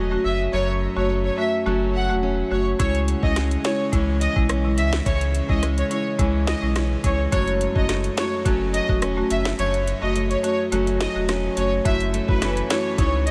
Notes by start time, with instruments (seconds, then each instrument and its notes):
Already playing: sub bass E1, nylon-string guitar F#2 F#3 A3 C#4
0.11 marimba A3 C#4 F#4
0.25 sub bass F#1, violin section E5
0.53 sub bass F#1, nylon-string guitar F#2, violin section C#5
0.96 sub bass F#1, marimba A3 C#4 F#4, violin section C#5
1.10 nylon-string guitar A3
1.25 violin section C#5
1.38 marimba A3 C#4 F#4, violin section E5
1.66 sub bass F#1, nylon-string guitar F#3 A3 C#4, marimba A3 C#4 F#4
1.95 violin section F#5
2.09 sub bass E1, marimba A3 C#4 F#4
2.23 nylon-string guitar C#4
2.51 sub bass F#1, marimba A3 C#4 F#4, violin section C#5
2.79 sub bass C#2, nylon-string guitar C#3, marimba G#3 C#4 E4, violin section C#5, kick, closed hi-hat
2.95 closed hi-hat
3.08 closed hi-hat
3.23 sub bass C#2, marimba G#3 C#4 E4, violin section D#5, kick
3.36 nylon-string guitar G#3, cross-stick, snare, closed hi-hat
3.51 closed hi-hat
3.64 marimba G#3 C#4 E4, violin section C#5, snare, closed hi-hat
3.93 sub bass C#2, nylon-string guitar E3 G#3 C#4, marimba G#3 C#4 E4, kick, closed hi-hat
4.21 violin section D#5, closed hi-hat
4.36 sub bass B1, marimba G#3 C#4 E4, kick
4.49 nylon-string guitar C#4, cross-stick, closed hi-hat
4.64 marimba G#3 C#4 E4
4.78 sub bass C#2, violin section E5, closed hi-hat
4.93 snare
5.06 sub bass C#2, nylon-string guitar C#3, violin section C#5, kick, closed hi-hat
5.21 closed hi-hat
5.35 closed hi-hat
5.49 sub bass C#2, marimba G#3 C#4 E4, violin section D#5, kick
5.63 nylon-string guitar G#3, cross-stick, closed hi-hat
5.78 violin section C#5, closed hi-hat
5.90 marimba G#3 C#4 E4, violin section C#5, closed hi-hat
6.19 sub bass C#2, nylon-string guitar E3 G#3 C#4, marimba G#3 C#4 E4, kick, closed hi-hat
6.47 violin section D#5, snare, closed hi-hat
6.62 sub bass B1, marimba G#3 C#4 E4
6.76 nylon-string guitar C#4, cross-stick, snare, closed hi-hat
7.04 sub bass C#2, marimba G#3 C#4 E4, violin section C#5, kick, closed hi-hat
7.32 sub bass F#1, nylon-string guitar F#2, marimba A3 C#4 F#4, violin section C#5, kick, closed hi-hat
7.48 closed hi-hat
7.61 closed hi-hat
7.75 sub bass F#1, marimba A3 C#4 F#4, violin section D#5, kick
7.89 nylon-string guitar A3, cross-stick, snare, closed hi-hat
8.04 closed hi-hat
8.17 marimba A3 C#4 F#4, violin section C#5, snare, closed hi-hat
8.45 sub bass F#1, nylon-string guitar F#3 A3 C#4, marimba A3 C#4 F#4, kick, closed hi-hat
8.74 violin section D#5, closed hi-hat
8.89 sub bass E1, marimba A3 C#4 F#4, kick
9.02 nylon-string guitar C#4, cross-stick, closed hi-hat
9.17 marimba A3 C#4 F#4
9.30 sub bass F#1, violin section E5, closed hi-hat
9.45 snare
9.59 sub bass F#1, nylon-string guitar F#2, violin section C#5, closed hi-hat
9.74 closed hi-hat
9.87 closed hi-hat
10.02 sub bass F#1, marimba A3 C#4 F#4, violin section D#5
10.15 nylon-string guitar A3, closed hi-hat
10.30 violin section C#5, closed hi-hat
10.43 marimba A3 C#4 F#4, violin section C#5, closed hi-hat
10.72 sub bass F#1, nylon-string guitar F#3 A3 C#4, marimba A3 C#4 F#4, closed hi-hat
10.87 closed hi-hat
11.00 violin section D#5, snare, closed hi-hat
11.15 sub bass E1, marimba A3 C#4 F#4
11.29 nylon-string guitar C#4, cross-stick, snare, closed hi-hat
11.57 sub bass F#1, marimba A3 C#4 F#4, violin section C#5, closed hi-hat
11.85 sub bass F#1, nylon-string guitar F#2, marimba A3 E4 F#4, violin section E5, kick, closed hi-hat
12.00 closed hi-hat
12.14 nylon-string guitar A3, closed hi-hat
12.28 sub bass F#1, marimba A3 E4 F#4, violin section B4, kick
12.42 nylon-string guitar E3 A3 C#4, cross-stick, snare, closed hi-hat
12.57 closed hi-hat
12.70 nylon-string guitar E3, marimba A3 E4 F#4, violin section C#5, snare, closed hi-hat
12.98 sub bass C#2, nylon-string guitar C#3, marimba C#4 D#4 E4, violin section C#5, kick, closed hi-hat
13.27 violin section D#5, closed hi-hat